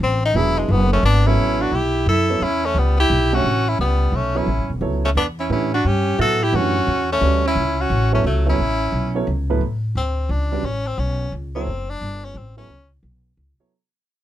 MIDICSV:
0, 0, Header, 1, 5, 480
1, 0, Start_track
1, 0, Tempo, 342466
1, 498, Time_signature, 3, 2, 24, 8
1, 19952, End_track
2, 0, Start_track
2, 0, Title_t, "Grand piano"
2, 0, Program_c, 0, 0
2, 500, Note_on_c, 0, 54, 68
2, 501, Note_on_c, 0, 59, 63
2, 502, Note_on_c, 0, 62, 67
2, 508, Note_on_c, 0, 68, 79
2, 509, Note_on_c, 0, 64, 71
2, 1228, Note_off_c, 0, 54, 0
2, 1228, Note_off_c, 0, 59, 0
2, 1229, Note_off_c, 0, 62, 0
2, 1232, Note_off_c, 0, 64, 0
2, 1232, Note_off_c, 0, 68, 0
2, 1777, Note_on_c, 0, 54, 70
2, 1780, Note_on_c, 0, 69, 71
2, 1781, Note_on_c, 0, 59, 74
2, 1784, Note_on_c, 0, 64, 72
2, 1788, Note_on_c, 0, 73, 87
2, 2391, Note_off_c, 0, 54, 0
2, 2392, Note_off_c, 0, 59, 0
2, 2392, Note_off_c, 0, 69, 0
2, 2394, Note_off_c, 0, 64, 0
2, 2396, Note_off_c, 0, 73, 0
2, 3217, Note_on_c, 0, 54, 56
2, 3220, Note_on_c, 0, 69, 55
2, 3223, Note_on_c, 0, 64, 57
2, 3224, Note_on_c, 0, 59, 58
2, 3233, Note_on_c, 0, 73, 66
2, 3368, Note_off_c, 0, 54, 0
2, 3370, Note_off_c, 0, 69, 0
2, 3372, Note_off_c, 0, 59, 0
2, 3372, Note_off_c, 0, 64, 0
2, 3376, Note_off_c, 0, 73, 0
2, 4661, Note_on_c, 0, 57, 68
2, 4664, Note_on_c, 0, 62, 65
2, 4665, Note_on_c, 0, 67, 58
2, 4670, Note_on_c, 0, 73, 62
2, 4671, Note_on_c, 0, 76, 80
2, 4813, Note_off_c, 0, 57, 0
2, 4814, Note_off_c, 0, 62, 0
2, 4815, Note_off_c, 0, 67, 0
2, 4817, Note_off_c, 0, 73, 0
2, 4818, Note_off_c, 0, 76, 0
2, 6096, Note_on_c, 0, 54, 68
2, 6098, Note_on_c, 0, 59, 59
2, 6102, Note_on_c, 0, 64, 61
2, 6103, Note_on_c, 0, 69, 56
2, 6105, Note_on_c, 0, 73, 77
2, 6253, Note_off_c, 0, 54, 0
2, 6254, Note_off_c, 0, 59, 0
2, 6256, Note_off_c, 0, 64, 0
2, 6256, Note_off_c, 0, 69, 0
2, 6257, Note_off_c, 0, 73, 0
2, 6746, Note_on_c, 0, 54, 65
2, 6749, Note_on_c, 0, 59, 59
2, 6753, Note_on_c, 0, 64, 59
2, 6753, Note_on_c, 0, 69, 62
2, 6757, Note_on_c, 0, 73, 70
2, 7030, Note_off_c, 0, 54, 0
2, 7032, Note_off_c, 0, 59, 0
2, 7034, Note_off_c, 0, 64, 0
2, 7034, Note_off_c, 0, 69, 0
2, 7036, Note_off_c, 0, 73, 0
2, 7703, Note_on_c, 0, 52, 56
2, 7705, Note_on_c, 0, 57, 55
2, 7708, Note_on_c, 0, 62, 52
2, 7711, Note_on_c, 0, 67, 56
2, 7712, Note_on_c, 0, 71, 67
2, 7990, Note_off_c, 0, 52, 0
2, 7990, Note_off_c, 0, 57, 0
2, 7992, Note_off_c, 0, 62, 0
2, 7993, Note_off_c, 0, 67, 0
2, 7994, Note_off_c, 0, 71, 0
2, 8661, Note_on_c, 0, 54, 61
2, 8664, Note_on_c, 0, 59, 55
2, 8667, Note_on_c, 0, 64, 57
2, 8672, Note_on_c, 0, 69, 57
2, 8677, Note_on_c, 0, 76, 62
2, 8949, Note_off_c, 0, 54, 0
2, 8950, Note_off_c, 0, 59, 0
2, 8952, Note_off_c, 0, 64, 0
2, 8954, Note_off_c, 0, 69, 0
2, 8957, Note_off_c, 0, 76, 0
2, 9155, Note_on_c, 0, 57, 55
2, 9157, Note_on_c, 0, 52, 65
2, 9160, Note_on_c, 0, 62, 62
2, 9164, Note_on_c, 0, 67, 56
2, 9169, Note_on_c, 0, 71, 69
2, 9436, Note_off_c, 0, 57, 0
2, 9437, Note_off_c, 0, 52, 0
2, 9438, Note_off_c, 0, 62, 0
2, 9440, Note_off_c, 0, 67, 0
2, 9443, Note_off_c, 0, 71, 0
2, 10114, Note_on_c, 0, 55, 71
2, 10117, Note_on_c, 0, 61, 64
2, 10121, Note_on_c, 0, 74, 74
2, 10122, Note_on_c, 0, 66, 57
2, 10128, Note_on_c, 0, 71, 66
2, 10395, Note_off_c, 0, 55, 0
2, 10397, Note_off_c, 0, 61, 0
2, 10398, Note_off_c, 0, 74, 0
2, 10399, Note_off_c, 0, 66, 0
2, 10402, Note_off_c, 0, 71, 0
2, 11381, Note_on_c, 0, 54, 68
2, 11388, Note_on_c, 0, 64, 66
2, 11389, Note_on_c, 0, 59, 66
2, 11391, Note_on_c, 0, 69, 63
2, 11394, Note_on_c, 0, 73, 78
2, 11537, Note_off_c, 0, 54, 0
2, 11540, Note_off_c, 0, 59, 0
2, 11540, Note_off_c, 0, 64, 0
2, 11542, Note_off_c, 0, 69, 0
2, 11543, Note_off_c, 0, 73, 0
2, 11858, Note_on_c, 0, 54, 66
2, 11860, Note_on_c, 0, 59, 61
2, 11864, Note_on_c, 0, 64, 68
2, 11864, Note_on_c, 0, 69, 65
2, 11865, Note_on_c, 0, 73, 68
2, 12015, Note_off_c, 0, 54, 0
2, 12016, Note_off_c, 0, 59, 0
2, 12017, Note_off_c, 0, 69, 0
2, 12018, Note_off_c, 0, 64, 0
2, 12018, Note_off_c, 0, 73, 0
2, 12823, Note_on_c, 0, 54, 71
2, 12830, Note_on_c, 0, 64, 67
2, 12832, Note_on_c, 0, 59, 71
2, 12835, Note_on_c, 0, 69, 66
2, 12837, Note_on_c, 0, 73, 82
2, 12977, Note_off_c, 0, 54, 0
2, 12980, Note_off_c, 0, 64, 0
2, 12981, Note_off_c, 0, 59, 0
2, 12983, Note_off_c, 0, 69, 0
2, 12983, Note_off_c, 0, 73, 0
2, 13310, Note_on_c, 0, 54, 62
2, 13312, Note_on_c, 0, 45, 71
2, 13312, Note_on_c, 0, 59, 66
2, 13317, Note_on_c, 0, 64, 66
2, 13320, Note_on_c, 0, 69, 69
2, 13322, Note_on_c, 0, 71, 85
2, 13459, Note_off_c, 0, 54, 0
2, 13461, Note_off_c, 0, 45, 0
2, 13461, Note_off_c, 0, 59, 0
2, 13463, Note_off_c, 0, 64, 0
2, 13465, Note_off_c, 0, 69, 0
2, 13466, Note_off_c, 0, 71, 0
2, 14746, Note_on_c, 0, 55, 70
2, 14749, Note_on_c, 0, 61, 63
2, 14749, Note_on_c, 0, 66, 66
2, 14754, Note_on_c, 0, 71, 64
2, 14754, Note_on_c, 0, 74, 72
2, 14896, Note_off_c, 0, 55, 0
2, 14898, Note_off_c, 0, 61, 0
2, 14898, Note_off_c, 0, 66, 0
2, 14900, Note_off_c, 0, 71, 0
2, 14900, Note_off_c, 0, 74, 0
2, 16198, Note_on_c, 0, 54, 77
2, 16199, Note_on_c, 0, 59, 74
2, 16203, Note_on_c, 0, 69, 75
2, 16204, Note_on_c, 0, 73, 84
2, 16207, Note_on_c, 0, 64, 78
2, 16341, Note_off_c, 0, 54, 0
2, 16341, Note_off_c, 0, 59, 0
2, 16343, Note_off_c, 0, 69, 0
2, 16344, Note_off_c, 0, 73, 0
2, 16345, Note_off_c, 0, 64, 0
2, 17617, Note_on_c, 0, 54, 62
2, 17623, Note_on_c, 0, 64, 57
2, 17625, Note_on_c, 0, 59, 57
2, 17629, Note_on_c, 0, 69, 56
2, 17631, Note_on_c, 0, 73, 70
2, 17769, Note_off_c, 0, 54, 0
2, 17772, Note_off_c, 0, 64, 0
2, 17773, Note_off_c, 0, 59, 0
2, 17775, Note_off_c, 0, 69, 0
2, 17776, Note_off_c, 0, 73, 0
2, 19060, Note_on_c, 0, 54, 72
2, 19060, Note_on_c, 0, 64, 61
2, 19061, Note_on_c, 0, 59, 62
2, 19067, Note_on_c, 0, 69, 62
2, 19068, Note_on_c, 0, 73, 73
2, 19209, Note_off_c, 0, 54, 0
2, 19209, Note_off_c, 0, 59, 0
2, 19209, Note_off_c, 0, 64, 0
2, 19212, Note_off_c, 0, 69, 0
2, 19213, Note_off_c, 0, 73, 0
2, 19952, End_track
3, 0, Start_track
3, 0, Title_t, "Tenor saxophone"
3, 0, Program_c, 1, 66
3, 43, Note_on_c, 1, 60, 104
3, 320, Note_off_c, 1, 60, 0
3, 356, Note_on_c, 1, 63, 118
3, 506, Note_on_c, 1, 64, 113
3, 527, Note_off_c, 1, 63, 0
3, 820, Note_on_c, 1, 56, 90
3, 841, Note_off_c, 1, 64, 0
3, 995, Note_on_c, 1, 59, 98
3, 1016, Note_off_c, 1, 56, 0
3, 1293, Note_off_c, 1, 59, 0
3, 1301, Note_on_c, 1, 61, 98
3, 1453, Note_off_c, 1, 61, 0
3, 1481, Note_on_c, 1, 62, 111
3, 1782, Note_on_c, 1, 64, 110
3, 1803, Note_off_c, 1, 62, 0
3, 2268, Note_on_c, 1, 66, 94
3, 2289, Note_off_c, 1, 64, 0
3, 2451, Note_on_c, 1, 67, 96
3, 2472, Note_off_c, 1, 66, 0
3, 2917, Note_off_c, 1, 67, 0
3, 2927, Note_on_c, 1, 69, 95
3, 3412, Note_on_c, 1, 64, 98
3, 3433, Note_off_c, 1, 69, 0
3, 3726, Note_on_c, 1, 61, 92
3, 3747, Note_off_c, 1, 64, 0
3, 3904, Note_on_c, 1, 59, 81
3, 3925, Note_off_c, 1, 61, 0
3, 4196, Note_off_c, 1, 59, 0
3, 4204, Note_on_c, 1, 67, 101
3, 4684, Note_on_c, 1, 66, 105
3, 4705, Note_off_c, 1, 67, 0
3, 5167, Note_on_c, 1, 64, 92
3, 5188, Note_off_c, 1, 66, 0
3, 5324, Note_off_c, 1, 64, 0
3, 5338, Note_on_c, 1, 59, 87
3, 5824, Note_on_c, 1, 61, 86
3, 5845, Note_off_c, 1, 59, 0
3, 6135, Note_on_c, 1, 64, 85
3, 6157, Note_off_c, 1, 61, 0
3, 6601, Note_off_c, 1, 64, 0
3, 7081, Note_on_c, 1, 61, 76
3, 7154, Note_off_c, 1, 61, 0
3, 7249, Note_on_c, 1, 62, 90
3, 7386, Note_off_c, 1, 62, 0
3, 7563, Note_on_c, 1, 64, 85
3, 7714, Note_off_c, 1, 64, 0
3, 7740, Note_on_c, 1, 64, 89
3, 8018, Note_off_c, 1, 64, 0
3, 8045, Note_on_c, 1, 66, 97
3, 8230, Note_on_c, 1, 67, 89
3, 8251, Note_off_c, 1, 66, 0
3, 8694, Note_off_c, 1, 67, 0
3, 8707, Note_on_c, 1, 69, 110
3, 9020, Note_on_c, 1, 67, 99
3, 9041, Note_off_c, 1, 69, 0
3, 9182, Note_on_c, 1, 66, 99
3, 9203, Note_off_c, 1, 67, 0
3, 9960, Note_off_c, 1, 66, 0
3, 9987, Note_on_c, 1, 61, 102
3, 10415, Note_off_c, 1, 61, 0
3, 10475, Note_on_c, 1, 64, 99
3, 10946, Note_on_c, 1, 66, 104
3, 10967, Note_off_c, 1, 64, 0
3, 11406, Note_off_c, 1, 66, 0
3, 11415, Note_on_c, 1, 61, 83
3, 11560, Note_off_c, 1, 61, 0
3, 11582, Note_on_c, 1, 57, 84
3, 11859, Note_off_c, 1, 57, 0
3, 11906, Note_on_c, 1, 64, 98
3, 12958, Note_off_c, 1, 64, 0
3, 13972, Note_on_c, 1, 60, 87
3, 14446, Note_on_c, 1, 62, 97
3, 14467, Note_off_c, 1, 60, 0
3, 14935, Note_on_c, 1, 61, 87
3, 14956, Note_off_c, 1, 62, 0
3, 15231, Note_on_c, 1, 60, 95
3, 15252, Note_off_c, 1, 61, 0
3, 15402, Note_on_c, 1, 61, 88
3, 15423, Note_off_c, 1, 60, 0
3, 15875, Note_off_c, 1, 61, 0
3, 16194, Note_on_c, 1, 60, 94
3, 16678, Note_on_c, 1, 62, 111
3, 16699, Note_off_c, 1, 60, 0
3, 17172, Note_on_c, 1, 61, 91
3, 17193, Note_off_c, 1, 62, 0
3, 17335, Note_on_c, 1, 60, 75
3, 17356, Note_off_c, 1, 61, 0
3, 17620, Note_off_c, 1, 60, 0
3, 17629, Note_on_c, 1, 61, 92
3, 18068, Note_off_c, 1, 61, 0
3, 19952, End_track
4, 0, Start_track
4, 0, Title_t, "Alto saxophone"
4, 0, Program_c, 2, 65
4, 1293, Note_on_c, 2, 57, 83
4, 1449, Note_off_c, 2, 57, 0
4, 1466, Note_on_c, 2, 59, 88
4, 1771, Note_on_c, 2, 61, 100
4, 1792, Note_off_c, 2, 59, 0
4, 2259, Note_on_c, 2, 62, 81
4, 2280, Note_off_c, 2, 61, 0
4, 2419, Note_on_c, 2, 64, 72
4, 2440, Note_off_c, 2, 62, 0
4, 2901, Note_off_c, 2, 64, 0
4, 2925, Note_on_c, 2, 64, 84
4, 3389, Note_on_c, 2, 61, 89
4, 3410, Note_off_c, 2, 64, 0
4, 3725, Note_on_c, 2, 57, 79
4, 3746, Note_off_c, 2, 61, 0
4, 3892, Note_on_c, 2, 55, 70
4, 3913, Note_off_c, 2, 57, 0
4, 4190, Note_off_c, 2, 55, 0
4, 4199, Note_on_c, 2, 64, 87
4, 4676, Note_on_c, 2, 61, 86
4, 4697, Note_off_c, 2, 64, 0
4, 5162, Note_off_c, 2, 61, 0
4, 5162, Note_on_c, 2, 61, 71
4, 5321, Note_off_c, 2, 61, 0
4, 5327, Note_on_c, 2, 55, 66
4, 5814, Note_on_c, 2, 57, 72
4, 5835, Note_off_c, 2, 55, 0
4, 6119, Note_on_c, 2, 61, 75
4, 6140, Note_off_c, 2, 57, 0
4, 6593, Note_off_c, 2, 61, 0
4, 7072, Note_on_c, 2, 57, 77
4, 7147, Note_off_c, 2, 57, 0
4, 7244, Note_on_c, 2, 59, 70
4, 7382, Note_off_c, 2, 59, 0
4, 7566, Note_on_c, 2, 61, 74
4, 7715, Note_off_c, 2, 61, 0
4, 7749, Note_on_c, 2, 61, 78
4, 8023, Note_off_c, 2, 61, 0
4, 8053, Note_on_c, 2, 62, 83
4, 8208, Note_on_c, 2, 61, 77
4, 8229, Note_off_c, 2, 62, 0
4, 8668, Note_off_c, 2, 61, 0
4, 8677, Note_on_c, 2, 66, 83
4, 9008, Note_on_c, 2, 64, 86
4, 9029, Note_off_c, 2, 66, 0
4, 9183, Note_on_c, 2, 61, 91
4, 9204, Note_off_c, 2, 64, 0
4, 9961, Note_off_c, 2, 61, 0
4, 9976, Note_on_c, 2, 57, 78
4, 10409, Note_off_c, 2, 57, 0
4, 10447, Note_on_c, 2, 61, 84
4, 10922, Note_off_c, 2, 61, 0
4, 10922, Note_on_c, 2, 61, 80
4, 11394, Note_off_c, 2, 61, 0
4, 11408, Note_on_c, 2, 57, 70
4, 11556, Note_off_c, 2, 57, 0
4, 11573, Note_on_c, 2, 54, 67
4, 11854, Note_off_c, 2, 54, 0
4, 11888, Note_on_c, 2, 61, 76
4, 12949, Note_off_c, 2, 61, 0
4, 19952, End_track
5, 0, Start_track
5, 0, Title_t, "Upright bass"
5, 0, Program_c, 3, 32
5, 0, Note_on_c, 3, 33, 91
5, 470, Note_off_c, 3, 33, 0
5, 476, Note_on_c, 3, 28, 85
5, 952, Note_off_c, 3, 28, 0
5, 960, Note_on_c, 3, 30, 96
5, 1435, Note_off_c, 3, 30, 0
5, 1443, Note_on_c, 3, 32, 99
5, 1917, Note_off_c, 3, 32, 0
5, 1932, Note_on_c, 3, 33, 81
5, 2396, Note_off_c, 3, 33, 0
5, 2404, Note_on_c, 3, 35, 78
5, 2879, Note_off_c, 3, 35, 0
5, 2890, Note_on_c, 3, 42, 88
5, 3363, Note_off_c, 3, 42, 0
5, 3371, Note_on_c, 3, 40, 80
5, 3844, Note_off_c, 3, 40, 0
5, 3850, Note_on_c, 3, 37, 78
5, 4325, Note_off_c, 3, 37, 0
5, 4344, Note_on_c, 3, 35, 86
5, 4813, Note_off_c, 3, 35, 0
5, 4825, Note_on_c, 3, 33, 84
5, 5294, Note_off_c, 3, 33, 0
5, 5309, Note_on_c, 3, 37, 83
5, 5769, Note_off_c, 3, 37, 0
5, 5777, Note_on_c, 3, 35, 81
5, 6247, Note_off_c, 3, 35, 0
5, 6255, Note_on_c, 3, 33, 81
5, 6417, Note_on_c, 3, 31, 55
5, 6438, Note_off_c, 3, 33, 0
5, 6572, Note_off_c, 3, 31, 0
5, 6581, Note_on_c, 3, 28, 64
5, 6729, Note_off_c, 3, 28, 0
5, 6737, Note_on_c, 3, 37, 82
5, 7212, Note_off_c, 3, 37, 0
5, 7221, Note_on_c, 3, 40, 80
5, 7694, Note_off_c, 3, 40, 0
5, 7704, Note_on_c, 3, 45, 79
5, 8176, Note_off_c, 3, 45, 0
5, 8196, Note_on_c, 3, 43, 78
5, 8662, Note_off_c, 3, 43, 0
5, 8671, Note_on_c, 3, 45, 82
5, 9140, Note_off_c, 3, 45, 0
5, 9147, Note_on_c, 3, 42, 79
5, 9618, Note_off_c, 3, 42, 0
5, 9626, Note_on_c, 3, 40, 85
5, 10097, Note_off_c, 3, 40, 0
5, 10107, Note_on_c, 3, 38, 86
5, 10578, Note_off_c, 3, 38, 0
5, 10590, Note_on_c, 3, 37, 81
5, 11059, Note_off_c, 3, 37, 0
5, 11072, Note_on_c, 3, 33, 93
5, 11539, Note_off_c, 3, 33, 0
5, 11552, Note_on_c, 3, 37, 94
5, 12019, Note_off_c, 3, 37, 0
5, 12030, Note_on_c, 3, 33, 80
5, 12498, Note_off_c, 3, 33, 0
5, 12506, Note_on_c, 3, 35, 82
5, 12975, Note_off_c, 3, 35, 0
5, 12991, Note_on_c, 3, 37, 84
5, 13458, Note_off_c, 3, 37, 0
5, 13467, Note_on_c, 3, 45, 75
5, 13935, Note_off_c, 3, 45, 0
5, 13949, Note_on_c, 3, 38, 83
5, 14415, Note_off_c, 3, 38, 0
5, 14426, Note_on_c, 3, 37, 87
5, 14888, Note_off_c, 3, 37, 0
5, 14897, Note_on_c, 3, 33, 81
5, 15368, Note_off_c, 3, 33, 0
5, 15387, Note_on_c, 3, 35, 92
5, 15853, Note_off_c, 3, 35, 0
5, 15868, Note_on_c, 3, 37, 86
5, 16333, Note_off_c, 3, 37, 0
5, 16352, Note_on_c, 3, 30, 84
5, 16815, Note_off_c, 3, 30, 0
5, 16837, Note_on_c, 3, 31, 82
5, 17293, Note_off_c, 3, 31, 0
5, 17301, Note_on_c, 3, 33, 86
5, 17768, Note_off_c, 3, 33, 0
5, 17779, Note_on_c, 3, 37, 74
5, 18247, Note_off_c, 3, 37, 0
5, 18258, Note_on_c, 3, 35, 81
5, 18726, Note_off_c, 3, 35, 0
5, 18743, Note_on_c, 3, 37, 81
5, 19031, Note_off_c, 3, 37, 0
5, 19952, End_track
0, 0, End_of_file